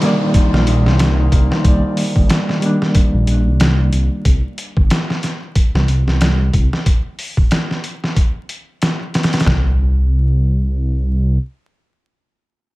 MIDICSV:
0, 0, Header, 1, 6, 480
1, 0, Start_track
1, 0, Key_signature, -3, "minor"
1, 0, Tempo, 652174
1, 1207, Time_signature, 4, 2, 24, 8
1, 9385, End_track
2, 0, Start_track
2, 0, Title_t, "Harp"
2, 0, Program_c, 0, 46
2, 0, Note_on_c, 0, 60, 71
2, 0, Note_on_c, 0, 63, 77
2, 0, Note_on_c, 0, 65, 68
2, 9, Note_on_c, 0, 58, 77
2, 145, Note_off_c, 0, 60, 0
2, 148, Note_on_c, 0, 60, 95
2, 248, Note_off_c, 0, 60, 0
2, 250, Note_on_c, 0, 60, 78
2, 387, Note_off_c, 0, 65, 0
2, 390, Note_on_c, 0, 65, 72
2, 488, Note_off_c, 0, 63, 0
2, 491, Note_on_c, 0, 63, 73
2, 625, Note_off_c, 0, 60, 0
2, 628, Note_on_c, 0, 60, 78
2, 728, Note_off_c, 0, 58, 0
2, 731, Note_on_c, 0, 58, 74
2, 866, Note_off_c, 0, 63, 0
2, 868, Note_on_c, 0, 63, 70
2, 968, Note_off_c, 0, 58, 0
2, 971, Note_on_c, 0, 58, 71
2, 1104, Note_off_c, 0, 60, 0
2, 1107, Note_on_c, 0, 60, 102
2, 2247, Note_off_c, 0, 65, 0
2, 2858, Note_off_c, 0, 63, 0
2, 3315, Note_off_c, 0, 60, 0
2, 3337, Note_off_c, 0, 58, 0
2, 9385, End_track
3, 0, Start_track
3, 0, Title_t, "Reed electric piano"
3, 0, Program_c, 1, 4
3, 0, Control_c, 1, 64, 127
3, 0, Note_on_c, 1, 51, 92
3, 0, Note_on_c, 1, 55, 75
3, 0, Note_on_c, 1, 58, 74
3, 0, Note_on_c, 1, 74, 90
3, 8, Note_off_c, 1, 55, 0
3, 8, Note_on_c, 1, 55, 80
3, 25, Note_off_c, 1, 58, 0
3, 25, Note_on_c, 1, 58, 82
3, 40, Note_off_c, 1, 74, 0
3, 40, Note_on_c, 1, 74, 104
3, 1175, Note_off_c, 1, 51, 0
3, 1183, Note_off_c, 1, 55, 0
3, 1188, Note_on_c, 1, 51, 80
3, 1192, Note_off_c, 1, 58, 0
3, 1199, Note_off_c, 1, 74, 0
3, 1206, Note_on_c, 1, 55, 79
3, 1221, Note_on_c, 1, 58, 76
3, 1238, Note_on_c, 1, 74, 89
3, 1893, Note_off_c, 1, 51, 0
3, 1902, Note_off_c, 1, 55, 0
3, 1907, Note_on_c, 1, 51, 86
3, 1910, Note_off_c, 1, 58, 0
3, 1918, Note_off_c, 1, 74, 0
3, 1922, Note_on_c, 1, 55, 84
3, 1939, Note_on_c, 1, 58, 81
3, 1955, Note_on_c, 1, 62, 100
3, 3093, Note_off_c, 1, 51, 0
3, 3100, Note_off_c, 1, 55, 0
3, 3109, Note_off_c, 1, 58, 0
3, 3117, Note_off_c, 1, 62, 0
3, 3136, Control_c, 1, 64, 0
3, 9385, End_track
4, 0, Start_track
4, 0, Title_t, "Detuned saw bass"
4, 0, Program_c, 2, 39
4, 391, Note_on_c, 2, 34, 87
4, 478, Note_off_c, 2, 34, 0
4, 492, Note_on_c, 2, 34, 78
4, 631, Note_on_c, 2, 36, 104
4, 642, Note_off_c, 2, 34, 0
4, 951, Note_off_c, 2, 36, 0
4, 972, Note_on_c, 2, 36, 93
4, 1091, Note_off_c, 2, 36, 0
4, 1211, Note_on_c, 2, 36, 94
4, 1331, Note_off_c, 2, 36, 0
4, 1588, Note_on_c, 2, 31, 82
4, 1676, Note_off_c, 2, 31, 0
4, 2308, Note_on_c, 2, 34, 88
4, 2396, Note_off_c, 2, 34, 0
4, 2411, Note_on_c, 2, 34, 77
4, 2551, Note_on_c, 2, 36, 102
4, 2562, Note_off_c, 2, 34, 0
4, 2870, Note_off_c, 2, 36, 0
4, 2890, Note_on_c, 2, 36, 89
4, 3010, Note_off_c, 2, 36, 0
4, 3129, Note_on_c, 2, 36, 99
4, 3250, Note_off_c, 2, 36, 0
4, 3507, Note_on_c, 2, 31, 84
4, 3596, Note_off_c, 2, 31, 0
4, 4228, Note_on_c, 2, 36, 86
4, 4316, Note_off_c, 2, 36, 0
4, 4329, Note_on_c, 2, 36, 78
4, 4449, Note_off_c, 2, 36, 0
4, 4465, Note_on_c, 2, 36, 93
4, 4787, Note_off_c, 2, 36, 0
4, 4809, Note_on_c, 2, 36, 95
4, 4930, Note_off_c, 2, 36, 0
4, 6964, Note_on_c, 2, 36, 91
4, 8376, Note_off_c, 2, 36, 0
4, 9385, End_track
5, 0, Start_track
5, 0, Title_t, "Downlifter"
5, 0, Program_c, 3, 103
5, 0, Note_on_c, 3, 60, 69
5, 3129, Note_off_c, 3, 60, 0
5, 9385, End_track
6, 0, Start_track
6, 0, Title_t, "Drums"
6, 12, Note_on_c, 9, 42, 65
6, 19, Note_on_c, 9, 38, 36
6, 86, Note_off_c, 9, 42, 0
6, 93, Note_off_c, 9, 38, 0
6, 251, Note_on_c, 9, 42, 77
6, 252, Note_on_c, 9, 36, 100
6, 325, Note_off_c, 9, 36, 0
6, 325, Note_off_c, 9, 42, 0
6, 398, Note_on_c, 9, 38, 50
6, 472, Note_off_c, 9, 38, 0
6, 492, Note_on_c, 9, 42, 63
6, 566, Note_off_c, 9, 42, 0
6, 636, Note_on_c, 9, 38, 40
6, 709, Note_off_c, 9, 38, 0
6, 731, Note_on_c, 9, 42, 78
6, 738, Note_on_c, 9, 38, 102
6, 805, Note_off_c, 9, 42, 0
6, 811, Note_off_c, 9, 38, 0
6, 971, Note_on_c, 9, 36, 88
6, 973, Note_on_c, 9, 42, 63
6, 1045, Note_off_c, 9, 36, 0
6, 1046, Note_off_c, 9, 42, 0
6, 1116, Note_on_c, 9, 38, 49
6, 1190, Note_off_c, 9, 38, 0
6, 1211, Note_on_c, 9, 36, 104
6, 1212, Note_on_c, 9, 42, 86
6, 1285, Note_off_c, 9, 36, 0
6, 1285, Note_off_c, 9, 42, 0
6, 1451, Note_on_c, 9, 46, 80
6, 1524, Note_off_c, 9, 46, 0
6, 1588, Note_on_c, 9, 36, 87
6, 1662, Note_off_c, 9, 36, 0
6, 1690, Note_on_c, 9, 42, 80
6, 1696, Note_on_c, 9, 38, 106
6, 1763, Note_off_c, 9, 42, 0
6, 1770, Note_off_c, 9, 38, 0
6, 1834, Note_on_c, 9, 38, 38
6, 1908, Note_off_c, 9, 38, 0
6, 1930, Note_on_c, 9, 42, 61
6, 2003, Note_off_c, 9, 42, 0
6, 2075, Note_on_c, 9, 38, 44
6, 2148, Note_off_c, 9, 38, 0
6, 2168, Note_on_c, 9, 42, 78
6, 2170, Note_on_c, 9, 36, 98
6, 2242, Note_off_c, 9, 42, 0
6, 2243, Note_off_c, 9, 36, 0
6, 2409, Note_on_c, 9, 42, 61
6, 2482, Note_off_c, 9, 42, 0
6, 2649, Note_on_c, 9, 42, 79
6, 2656, Note_on_c, 9, 38, 108
6, 2723, Note_off_c, 9, 42, 0
6, 2730, Note_off_c, 9, 38, 0
6, 2889, Note_on_c, 9, 42, 64
6, 2963, Note_off_c, 9, 42, 0
6, 3129, Note_on_c, 9, 36, 92
6, 3129, Note_on_c, 9, 42, 83
6, 3203, Note_off_c, 9, 36, 0
6, 3203, Note_off_c, 9, 42, 0
6, 3370, Note_on_c, 9, 42, 66
6, 3443, Note_off_c, 9, 42, 0
6, 3508, Note_on_c, 9, 36, 85
6, 3581, Note_off_c, 9, 36, 0
6, 3609, Note_on_c, 9, 42, 78
6, 3615, Note_on_c, 9, 38, 109
6, 3682, Note_off_c, 9, 42, 0
6, 3689, Note_off_c, 9, 38, 0
6, 3755, Note_on_c, 9, 38, 39
6, 3829, Note_off_c, 9, 38, 0
6, 3849, Note_on_c, 9, 42, 59
6, 3855, Note_on_c, 9, 38, 35
6, 3922, Note_off_c, 9, 42, 0
6, 3929, Note_off_c, 9, 38, 0
6, 4088, Note_on_c, 9, 42, 75
6, 4089, Note_on_c, 9, 36, 94
6, 4162, Note_off_c, 9, 42, 0
6, 4163, Note_off_c, 9, 36, 0
6, 4235, Note_on_c, 9, 38, 51
6, 4308, Note_off_c, 9, 38, 0
6, 4330, Note_on_c, 9, 42, 60
6, 4403, Note_off_c, 9, 42, 0
6, 4472, Note_on_c, 9, 38, 40
6, 4546, Note_off_c, 9, 38, 0
6, 4568, Note_on_c, 9, 42, 74
6, 4575, Note_on_c, 9, 38, 103
6, 4642, Note_off_c, 9, 42, 0
6, 4649, Note_off_c, 9, 38, 0
6, 4809, Note_on_c, 9, 36, 84
6, 4810, Note_on_c, 9, 42, 62
6, 4883, Note_off_c, 9, 36, 0
6, 4883, Note_off_c, 9, 42, 0
6, 4954, Note_on_c, 9, 38, 47
6, 5028, Note_off_c, 9, 38, 0
6, 5049, Note_on_c, 9, 36, 100
6, 5050, Note_on_c, 9, 42, 78
6, 5123, Note_off_c, 9, 36, 0
6, 5124, Note_off_c, 9, 42, 0
6, 5289, Note_on_c, 9, 46, 74
6, 5363, Note_off_c, 9, 46, 0
6, 5426, Note_on_c, 9, 36, 84
6, 5500, Note_off_c, 9, 36, 0
6, 5527, Note_on_c, 9, 42, 78
6, 5534, Note_on_c, 9, 38, 97
6, 5601, Note_off_c, 9, 42, 0
6, 5607, Note_off_c, 9, 38, 0
6, 5674, Note_on_c, 9, 38, 37
6, 5747, Note_off_c, 9, 38, 0
6, 5769, Note_on_c, 9, 42, 59
6, 5842, Note_off_c, 9, 42, 0
6, 5915, Note_on_c, 9, 38, 40
6, 5989, Note_off_c, 9, 38, 0
6, 6008, Note_on_c, 9, 36, 87
6, 6009, Note_on_c, 9, 42, 73
6, 6082, Note_off_c, 9, 36, 0
6, 6083, Note_off_c, 9, 42, 0
6, 6249, Note_on_c, 9, 42, 61
6, 6323, Note_off_c, 9, 42, 0
6, 6489, Note_on_c, 9, 42, 73
6, 6496, Note_on_c, 9, 38, 99
6, 6563, Note_off_c, 9, 42, 0
6, 6569, Note_off_c, 9, 38, 0
6, 6728, Note_on_c, 9, 42, 61
6, 6735, Note_on_c, 9, 38, 76
6, 6796, Note_off_c, 9, 42, 0
6, 6796, Note_on_c, 9, 42, 54
6, 6803, Note_off_c, 9, 38, 0
6, 6803, Note_on_c, 9, 38, 80
6, 6866, Note_off_c, 9, 42, 0
6, 6866, Note_on_c, 9, 42, 59
6, 6872, Note_off_c, 9, 38, 0
6, 6872, Note_on_c, 9, 38, 78
6, 6917, Note_off_c, 9, 42, 0
6, 6917, Note_on_c, 9, 42, 58
6, 6923, Note_off_c, 9, 38, 0
6, 6923, Note_on_c, 9, 38, 77
6, 6966, Note_on_c, 9, 43, 86
6, 6973, Note_off_c, 9, 38, 0
6, 6973, Note_on_c, 9, 38, 89
6, 6990, Note_off_c, 9, 42, 0
6, 7040, Note_off_c, 9, 43, 0
6, 7046, Note_off_c, 9, 38, 0
6, 9385, End_track
0, 0, End_of_file